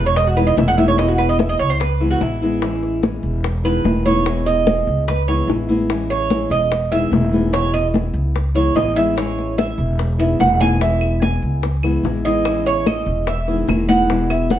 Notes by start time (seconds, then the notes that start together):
Already playing: E1 E3 G#3 C#4 E4
0.06 C#5
0.15 D#5, muted nylon-string guitar stroke, high bongo, high conga
0.27 F#4
0.36 D#3 G#3 B3 E4 B4, high bongo, high conga
0.47 D#5
0.56 E1 D#3 G#3 B3 E4 E5, high bongo, low bongo, high conga
0.68 F#5
0.77 D#3 G#3 B3 E4 E5, high conga
0.88 C#5
0.98 B2 G#3 B3 E4 D#5, high bongo, high conga
1.08 F#4
1.18 B4, high bongo, high conga
1.29 D#5
1.39 G#3 B3 E4 E5, high bongo, high conga
1.49 D#5
1.59 C#2 C#5
1.70 C5
1.80 B4, muted nylon-string guitar stroke, high bongo, high conga
2.00 E3 G#3 B3 E4, high bongo, high conga
2.11 F#4
2.20 A1 E3 G#3 B3 E4, high bongo, low bongo, high conga
2.42 E3 G#3 B3 E4
2.62 E3 G#3 C#4 E4, high bongo, high conga
2.83 high bongo, high conga
3.02 E3 G#3 C#4 E4, high bongo, high conga
3.23 E1, high conga
3.44 muted nylon-string guitar stroke, high bongo, high conga
3.64 D#3 G#3 B3 E4 B4, high bongo, high conga
3.84 E1 D#3 G#3 B3 E4, high bongo, low bongo, high conga
4.06 D#3 G#3 B3 E4 C#5, high conga
4.26 B2 G#3 B3 E4, high bongo, high conga
4.46 D#5, high bongo, high conga
4.67 G#3 B3 E4, high bongo, high conga
4.87 C#2
5.08 B4, muted nylon-string guitar stroke, high bongo, high conga
5.28 E3 G#3 B3 E4 C#5, high bongo, high conga
5.47 A1 E3 G#3 B3 E4, high bongo, low bongo, high conga
5.69 E3 G#3 B3 E4, high conga
5.89 E3 G#3 C#4 E4, high bongo, high conga
6.10 C#5, high bongo, high conga
6.30 E3 G#3 C#4 E4, high bongo, high conga
6.50 E1 D#5, high conga
6.71 muted nylon-string guitar stroke, high bongo, high conga
6.91 D#3 G#3 B3 E4 E5, high bongo, high conga
7.11 E1 D#3 G#3 B3 E4, high bongo, low bongo, high conga
7.32 D#3 G#3 B3 E4, high conga
7.52 B2 G#3 B3 E4 C#5, high bongo, high conga
7.74 D#5, high bongo, high conga
7.94 G#3 B3 E4, high bongo, high conga
8.13 C#2
8.34 muted nylon-string guitar stroke, high bongo, high conga
8.55 E3 G#3 B3 E4 C#5, high bongo, high conga
8.75 A1 E3 G#3 B3 E4 D#5, high bongo, low bongo, high conga
8.95 E3 G#3 B3 E4 E5
9.16 E3 G#3 C#4 E4 C#5, high bongo, high conga
9.38 high bongo, high conga
9.58 E3 G#3 C#4 E4 E5, high bongo, high conga
9.78 E1, high conga
9.99 muted nylon-string guitar stroke, high bongo, high conga
10.18 D#3 G#3 B3 E4 E5, high bongo, high conga
10.40 E1 D#3 G#3 B3 E4 F#5, high bongo, low bongo, high conga
10.60 D#3 G#3 B3 E4 G#5, high conga
10.80 B2 G#3 B3 E4 E5, high bongo, high conga
11.01 high bongo, high conga, claves
11.22 G#3 B3 E4 G#5, high bongo, high conga
11.42 C#2
11.63 muted nylon-string guitar stroke, high bongo, high conga
11.83 E3 G#3 B3 E4, high bongo, high conga, claves
12.03 A1 E3 G#3 B3 E4, high bongo, low bongo, high conga
12.25 E3 G#3 B3 E4 D#5
12.45 E3 G#3 C#4 E4, high bongo, high conga, claves
12.66 C#5, high bongo, high conga
12.86 E3 G#3 C#4 E4 D#5, high bongo, high conga, claves
13.06 E1, high conga
13.27 E5, muted nylon-string guitar stroke, high bongo, high conga
13.48 D#3 G#3 B3 E4, high bongo, high conga
13.68 E1 D#3 G#3 B3 E4, high bongo, low bongo, high conga, claves
13.89 D#3 G#3 B3 E4 F#5, high conga
14.08 B2 G#3 B3 E4, high bongo, high conga
14.30 E5, high bongo, high conga, claves
14.50 G#3 B3 E4 F#5, high bongo, high conga